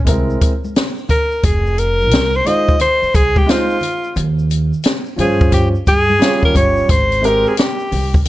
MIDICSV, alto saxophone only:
0, 0, Header, 1, 2, 480
1, 0, Start_track
1, 0, Tempo, 681818
1, 1014, Time_signature, 4, 2, 24, 8
1, 5832, End_track
2, 0, Start_track
2, 0, Title_t, "Alto saxophone"
2, 0, Program_c, 0, 65
2, 776, Note_on_c, 0, 70, 93
2, 1019, Note_on_c, 0, 68, 87
2, 1030, Note_off_c, 0, 70, 0
2, 1259, Note_on_c, 0, 70, 106
2, 1270, Note_off_c, 0, 68, 0
2, 1660, Note_on_c, 0, 72, 103
2, 1670, Note_off_c, 0, 70, 0
2, 1739, Note_on_c, 0, 75, 92
2, 1749, Note_off_c, 0, 72, 0
2, 1976, Note_off_c, 0, 75, 0
2, 1980, Note_on_c, 0, 72, 106
2, 2219, Note_on_c, 0, 68, 104
2, 2229, Note_off_c, 0, 72, 0
2, 2381, Note_on_c, 0, 67, 93
2, 2391, Note_off_c, 0, 68, 0
2, 2467, Note_on_c, 0, 65, 84
2, 2478, Note_off_c, 0, 67, 0
2, 2941, Note_off_c, 0, 65, 0
2, 3663, Note_on_c, 0, 68, 84
2, 3882, Note_off_c, 0, 68, 0
2, 3897, Note_on_c, 0, 67, 77
2, 4004, Note_off_c, 0, 67, 0
2, 4140, Note_on_c, 0, 68, 109
2, 4508, Note_off_c, 0, 68, 0
2, 4538, Note_on_c, 0, 70, 91
2, 4612, Note_off_c, 0, 70, 0
2, 4621, Note_on_c, 0, 73, 101
2, 4861, Note_on_c, 0, 72, 94
2, 4871, Note_off_c, 0, 73, 0
2, 5104, Note_on_c, 0, 70, 93
2, 5114, Note_off_c, 0, 72, 0
2, 5265, Note_on_c, 0, 68, 76
2, 5275, Note_off_c, 0, 70, 0
2, 5340, Note_off_c, 0, 68, 0
2, 5343, Note_on_c, 0, 67, 79
2, 5791, Note_off_c, 0, 67, 0
2, 5832, End_track
0, 0, End_of_file